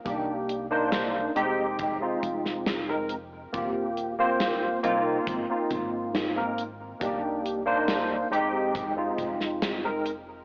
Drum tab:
HH |x-x-x-x-x-x-x-x-|x-x-x-x-x-x-x-x-|x-x-x-x-x-x-x-x-|
SD |----o------oo---|----o-------o---|----o------oo---|
BD |o-------o-o-----|o-------o-o-----|o-------o-o-----|